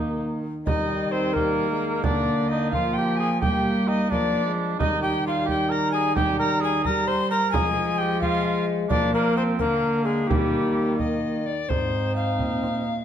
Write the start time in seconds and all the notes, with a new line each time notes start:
Already playing: D#3 A#3 D#4
0.66 D#3 G3 D#4 D#5, frame drum
1.11 C4 C5
1.33 G3 A#3 A#4, frame drum
1.72 G#3
2.03 D3 A#3 D4 D5, frame drum
2.48 D#4 D#5
2.71 F3 A#3 F4 F5, frame drum
2.94 G5
2.98 G4
3.17 G#4 G#5
3.41 G3 A#3 G4 G5, frame drum
3.88 D#4 D#5
4.11 F3 A#3 D4 D5, frame drum
4.45 G#3
4.79 D#3 G3 D#4 D#5, frame drum
5.02 G4 G5
5.27 F4 F5
5.45 G3 G4, frame drum
5.49 G5
5.69 A#4 A#5
5.92 G#4 G#5
6.15 G3 G4 G5, frame drum
6.39 A#4 A#5
6.61 G#4 G#5
6.85 G3 A#4 A#5, frame drum
7.07 C5 C6
7.30 A#4 A#5
7.51 F3 G#3 G#4 G#5, frame drum
7.98 G4 G5
8.21 G#3 F4 F5, frame drum
8.89 F3 A#3 D4 D5, frame drum
9.14 A#3 A#4
9.37 C4 C5
9.59 D3 A#3 A#4, frame drum
10.04 G#3 G#4
10.27 D#3 G3 A#3 G4, frame drum
10.98 D#5, frame drum
11.46 D5
11.69 G#2 C4 D#4 C5, frame drum
12.16 F5
12.39 A#2, frame drum
12.63 frame drum